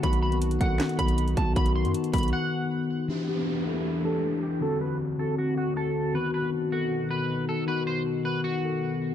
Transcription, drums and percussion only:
0.03 kick loud
0.03 closed hi-hat medium
0.13 closed hi-hat medium
0.32 closed hi-hat medium
0.42 closed hi-hat loud
0.51 closed hi-hat medium
0.61 kick loud
0.61 closed hi-hat medium
0.80 snare loud
0.80 clap loud
0.80 closed hi-hat medium
0.89 closed hi-hat medium
0.99 kick medium
0.99 closed hi-hat medium
1.08 closed hi-hat medium
1.18 closed hi-hat medium
1.28 closed hi-hat medium
1.37 kick loud
1.37 closed hi-hat medium
1.56 kick loud
1.56 closed hi-hat medium
1.66 closed hi-hat medium
1.85 closed hi-hat medium
1.94 closed hi-hat loud
2.04 closed hi-hat medium
2.13 kick loud
2.13 closed hi-hat medium
2.13 open hi-hat medium
2.18 closed hi-hat medium
2.23 closed hi-hat medium
2.28 closed hi-hat soft

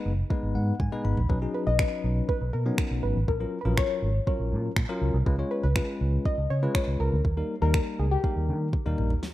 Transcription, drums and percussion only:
0.30 kick loud
0.80 kick loud
0.80 high tom medium
0.92 mid tom medium
1.05 mid tom medium
1.17 floor tom medium
1.30 kick loud
1.79 finger snap loud
1.79 kick loud
2.29 kick loud
2.78 finger snap loud
2.78 kick loud
3.28 kick loud
3.78 finger snap loud
3.78 kick loud
4.27 kick loud
4.76 finger snap loud
4.76 kick loud
5.26 kick loud
5.76 finger snap loud
5.76 kick loud
6.25 kick loud
6.75 finger snap loud
6.75 kick loud
7.25 kick loud
7.74 finger snap loud
7.74 kick loud
8.24 kick loud
8.73 kick loud
8.73 high tom medium
8.86 mid tom medium
8.98 mid tom medium
9.10 floor tom medium
9.23 snare soft

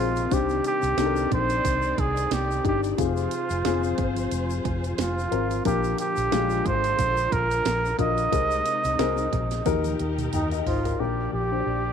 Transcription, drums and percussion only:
0.16 closed hi-hat soft
0.16 shaker soft
0.31 kick loud
0.31 closed hi-hat medium
0.31 shaker medium
0.49 closed hi-hat soft
0.49 shaker soft
0.64 closed hi-hat medium
0.64 shaker soft
0.82 closed hi-hat medium
0.82 shaker soft
0.98 snare loud
0.98 closed hi-hat medium
0.98 shaker medium
1.16 shaker soft
1.32 kick medium
1.32 closed hi-hat medium
1.50 closed hi-hat medium
1.50 shaker soft
1.65 kick medium
1.65 closed hi-hat medium
1.65 shaker medium
1.82 shaker medium
1.98 kick medium
1.98 closed hi-hat medium
2.17 closed hi-hat soft
2.17 shaker medium
2.31 snare medium
2.31 closed hi-hat medium
2.31 shaker medium
2.51 shaker soft
2.65 kick medium
2.65 closed hi-hat medium
2.84 closed hi-hat soft
2.84 shaker soft
2.98 kick loud
2.98 closed hi-hat medium
2.98 shaker medium
3.17 closed hi-hat soft
3.17 shaker soft
3.31 closed hi-hat medium
3.31 shaker soft
3.50 closed hi-hat medium
3.50 shaker soft
3.65 snare loud
3.65 closed hi-hat medium
3.65 shaker medium
3.84 shaker soft
3.98 kick medium
3.98 closed hi-hat medium
4.16 closed hi-hat medium
4.16 shaker soft
4.31 closed hi-hat medium
4.31 shaker medium
4.50 shaker medium
4.65 kick medium
4.65 closed hi-hat medium
4.84 closed hi-hat soft
4.84 shaker soft
4.98 snare medium
4.98 closed hi-hat medium
4.98 shaker medium
5.19 shaker soft
5.32 closed hi-hat medium
5.51 closed hi-hat soft
5.51 shaker soft
5.65 kick loud
5.65 closed hi-hat medium
5.65 shaker medium
5.84 closed hi-hat soft
5.84 shaker soft
5.98 closed hi-hat medium
5.98 shaker soft
6.16 closed hi-hat medium
6.16 shaker soft
6.32 snare loud
6.32 closed hi-hat medium
6.32 shaker medium
6.50 shaker soft
6.66 kick medium
6.66 closed hi-hat medium
6.84 closed hi-hat medium
6.84 shaker soft
6.99 kick medium
6.99 closed hi-hat medium
6.99 shaker medium
7.17 shaker medium
7.32 kick medium
7.32 closed hi-hat medium
7.51 closed hi-hat soft
7.51 shaker soft
7.65 snare medium
7.65 closed hi-hat medium
7.65 shaker medium
7.85 shaker soft
7.99 kick medium
7.99 closed hi-hat medium
8.18 closed hi-hat soft
8.18 shaker soft
8.32 kick medium
8.32 closed hi-hat medium
8.32 shaker medium
8.51 closed hi-hat soft
8.51 shaker soft
8.66 closed hi-hat medium
8.66 shaker soft
8.84 closed hi-hat medium
8.84 shaker soft
8.99 snare loud
8.99 closed hi-hat medium
8.99 shaker medium
9.18 closed hi-hat soft
9.18 shaker soft
9.33 kick medium
9.33 closed hi-hat medium
9.51 snare soft
9.51 closed hi-hat medium
9.51 shaker soft
9.66 kick medium
9.66 closed hi-hat medium
9.66 high tom medium
9.66 shaker medium
9.84 closed hi-hat soft
9.84 high tom soft
9.84 shaker medium
10.00 closed hi-hat medium
10.18 closed hi-hat soft
10.18 mid tom medium
10.18 shaker medium
10.33 closed hi-hat medium
10.33 mid tom medium
10.33 shaker medium
10.51 closed hi-hat soft
10.51 shaker soft
10.67 floor tom loud
10.67 open hi-hat medium
10.85 closed hi-hat soft
10.85 floor tom medium
10.85 shaker soft

